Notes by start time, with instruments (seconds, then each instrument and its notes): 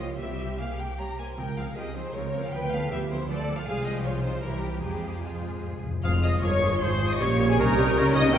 Already playing: double bass section C#2, viola section F3, cello section F4
0.00 viola section A#3, violin section G4
0.19 double bass section C2, timpani C3, viola section G3 C4, cello section G4, violin section G4 E5
0.59 viola section A#3, violin section G#4 F5
0.78 viola section G#3, violin section A#4 G5
0.98 viola section G3, violin section C#5 A#5
1.17 viola section A#3, violin section C5 G#5
1.37 double bass section C#2, viola section F3 C4, violin section A#4 G5, cello section A#4
1.57 viola section F3 C4, violin section G#4 F5
1.77 double bass section C#2, viola section F3 C4, violin section G4 D#5, cello section G#4
1.96 viola section F3 C4, violin section D#4 C5
2.15 double bass section C#2, viola section F3 C4, violin section F4 C#5, cello section A#4
2.35 viola section F3 C4
2.45 violin section G#4 F5
2.53 double bass section D2, viola section F3 B3, cello section B4, violin section B4 G5
2.72 viola section F3 B3, violin section A4 F5
2.92 double bass section D2, viola section F3 B3, cello section G4, violin section G4 E5
3.10 viola section F3 B3, violin section E4 C5
3.29 double bass section D2, viola section F3 B3, violin section F4 D5, cello section A4
3.48 viola section F3 B3
3.58 violin section A4 F5
3.66 double bass section C2, timpani C3, viola section F3 G#3, cello section G#4, violin section G#4 F5
3.86 violin section G4 D#5
4.05 cello section F4, violin section F4 C#5
4.24 violin section D#4 C5
4.43 double bass section C2, viola section E3 G3, violin section E4 A#4, cello section G4
4.63 violin section A#3 G4
4.83 double bass section F2, viola section F3 G#3, violin section A#3 G4, cello section G#4
5.08 timpani F2
5.16 timpani F2
5.24 timpani F2, viola section F3 G#3, violin section G#3 F4
5.31 timpani F2
5.40 timpani F2
5.47 timpani F2
5.55 timpani F2
5.63 timpani F2
5.70 timpani F2
5.78 timpani F2
5.86 timpani F2
5.93 timpani F2
6.04 double bass section F1, cello section F2, timpani F2, bassoon F3, french horn section G#3 F4, viola section G#3 F4, oboe G#4, flute F5, violin section F5 F6, clarinet F5, trumpet section F5
6.23 bassoon F3, oboe G#4, clarinet D#5, flute D#5, violin section D#5 D#6, trumpet section D#5
6.42 double bass section G1, cello section G2, bassoon F3, oboe G#4, viola section A#4, clarinet C#5, flute C#5, violin section C#5 C#6, trumpet section C#5
6.62 bassoon F3, oboe G#4, viola section G#4
6.81 double bass section G#1, cello section G#2, bassoon F3, french horn section G#3 F4, oboe G#4, flute C5, clarinet C5, trumpet section C5, violin section C5 C6
7.01 bassoon F3, oboe G#4
7.11 clarinet D#5, trumpet section D#5, flute D#5, violin section D#5 D#6
7.20 double bass section A#1, cello section A#2, bassoon G3, viola section A#3 G4, french horn section C#4 G4, flute C#5, trumpet section C#5, violin section C#5 C#6, clarinet C#5, oboe C#5
7.39 bassoon G3, oboe C#5
7.49 clarinet G#4, flute G#4, violin section G#4 G#5, trumpet section G#4
7.58 double bass section C2, cello section C3, bassoon G3, french horn section C#4 G4, viola section D#4, violin section A#4 A#5, trumpet section A#4, clarinet A#4, flute A#4, oboe C#5
7.77 bassoon G3, oboe C#5
7.96 double bass section C#2, cello section C#3, bassoon G3, viola section C#4 F4, oboe C#5
8.14 bassoon G3, viola section D#4, oboe C#5, trumpet section D#5, flute D#5, violin section D#5 D#6, clarinet D#5
8.33 double bass section C2, cello section C3, timpani C3, bassoon E3, french horn section A#3 E4, viola section A#3 E4, oboe A#4, clarinet G5, flute G5, trumpet section G5, violin section G5 G6